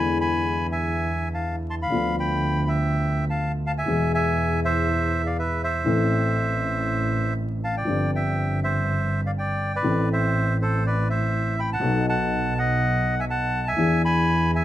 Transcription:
Already playing: grand piano E2 D3 E3 G#3 B3 E4, double bass E2, bandoneon G#5 B5
0.21 bandoneon G#5 B5
0.72 bandoneon E5 G#5
1.34 bandoneon F5 A5
1.70 bandoneon A5 C6
1.82 bandoneon F5 B5
1.90 grand piano D2 D3 F3 B3, double bass D2
1.94 grand piano F4
2.19 bandoneon G5 B5
2.67 bandoneon E5 G5
3.30 bandoneon F5 A5
3.66 bandoneon F5 A5
3.78 bandoneon E5 G#5
3.86 grand piano E2 B2 E3 G#3, double bass E2
3.90 grand piano G#4
4.14 bandoneon E5 G#5
4.65 bandoneon C5 E5
5.26 bandoneon D5 F5
5.39 bandoneon B4 E5
5.63 bandoneon C5 E5
5.84 grand piano A1 A2 E3 A3 C4, double bass A1
5.88 grand piano A4
7.64 bandoneon F5 A5
7.77 bandoneon D5 G5
7.85 grand piano G1 G2 F3 C4 D4, double bass G1
7.89 grand piano G4
8.15 bandoneon E5 G5
8.63 bandoneon C5 E5
9.26 bandoneon D5 F5
9.38 bandoneon D5 G5
9.75 bandoneon B4 D5
9.82 grand piano A1 A2 E3 A3 C4, double bass A1
9.87 grand piano A4
10.13 bandoneon C5 E5
10.62 bandoneon A4 C5
10.86 bandoneon B4 D5
11.10 bandoneon C5 E5
11.59 bandoneon G5 B5
11.73 bandoneon F#5 A5
11.80 grand piano B1 B2 F#3 B3 D#4 A4, double bass B1
12.09 bandoneon F#5 A5
12.58 bandoneon D#5 F#5
13.20 bandoneon E5 G#5
13.30 bandoneon F#5 A5
13.68 bandoneon E5 G#5
13.77 grand piano E2 E3 B3 D4 G#4, double bass E2
14.05 bandoneon G#5 B5
14.55 bandoneon E5 G#5

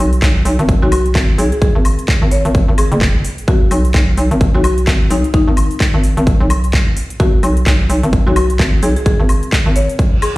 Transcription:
Already playing: marimba F#4
0.00 fm bass B1
0.13 closed hi-hat, shaker
0.22 fm bass B1, kick, clap, closed hi-hat, shaker
0.45 fm bass B1, open hi-hat, shaker
0.59 fm bass G#1, closed hi-hat, shaker
0.69 kick, closed hi-hat, shaker
0.82 fm bass B1, marimba F#4
0.92 marimba F#4, open hi-hat, high woodblock, shaker
1.06 closed hi-hat, shaker
1.15 fm bass G#1, kick, clap, closed hi-hat, shaker
1.38 fm bass B1, marimba G#4, open hi-hat, shaker
1.52 marimba G#4, closed hi-hat, shaker
1.62 marimba G#4, kick, closed hi-hat, shaker
1.75 fm bass G#1
1.85 open hi-hat, high woodblock, shaker
1.99 closed hi-hat, shaker
2.08 kick, clap, closed hi-hat, shaker
2.22 fm bass G#1
2.31 marimba C#5, open hi-hat, shaker
2.45 fm bass G#1, closed hi-hat, shaker
2.55 kick, closed hi-hat, shaker
2.68 fm bass G#1
2.78 marimba G#4, open hi-hat, high woodblock, shaker
2.92 fm bass F#1, closed hi-hat, shaker
3.01 kick, clap, closed hi-hat, shaker
3.24 open hi-hat, shaker
3.38 closed hi-hat, shaker
3.48 fm bass G#1, marimba F#4, kick, closed hi-hat, shaker
3.71 fm bass B1, open hi-hat, high woodblock, shaker
3.85 closed hi-hat, shaker
3.94 fm bass B1, kick, clap, closed hi-hat, shaker
4.17 fm bass B1, open hi-hat, shaker
4.31 fm bass G#1, closed hi-hat, shaker
4.41 kick, closed hi-hat, shaker
4.55 fm bass B1, marimba F#4
4.64 marimba F#4, open hi-hat, high woodblock, shaker
4.78 closed hi-hat, shaker
4.87 fm bass G#1, kick, clap, closed hi-hat, shaker
5.10 fm bass B1, marimba D#4, open hi-hat, shaker
5.24 closed hi-hat, shaker
5.34 marimba D#4, kick, closed hi-hat, shaker
5.48 fm bass G#1
5.57 open hi-hat, high woodblock, shaker
5.71 closed hi-hat, shaker
5.80 kick, clap, closed hi-hat, shaker
5.94 fm bass G#1
6.04 open hi-hat, shaker
6.17 fm bass G#1, closed hi-hat, shaker
6.27 kick, closed hi-hat, shaker
6.41 fm bass B1
6.50 open hi-hat, high woodblock, shaker
6.64 closed hi-hat, shaker
6.73 kick, clap, closed hi-hat, shaker
6.97 open hi-hat, shaker
7.10 closed hi-hat, shaker
7.20 fm bass G#1, marimba F#4, kick, closed hi-hat, shaker
7.43 fm bass B1, open hi-hat, high woodblock, shaker
7.57 closed hi-hat, shaker
7.66 fm bass B1, kick, clap, closed hi-hat, shaker
7.90 fm bass B1, open hi-hat, shaker
8.03 fm bass G#1, closed hi-hat, shaker
8.13 kick, closed hi-hat, shaker
8.27 fm bass B1, marimba F#4
8.36 marimba F#4, open hi-hat, high woodblock, shaker
8.50 closed hi-hat, shaker
8.59 fm bass G#1, kick, clap, closed hi-hat, shaker
8.83 fm bass B1, marimba G#4, open hi-hat, shaker
8.96 marimba G#4, closed hi-hat, shaker
9.06 marimba G#4, kick, closed hi-hat, shaker
9.20 fm bass G#1
9.29 open hi-hat, high woodblock, shaker
9.43 closed hi-hat, shaker
9.52 kick, clap, closed hi-hat, shaker
9.66 fm bass G#1
9.76 marimba C#5, open hi-hat, shaker
9.89 closed hi-hat, shaker
9.99 kick, closed hi-hat, reverse cymbal, shaker
10.22 marimba G#4, open hi-hat, high woodblock, shaker

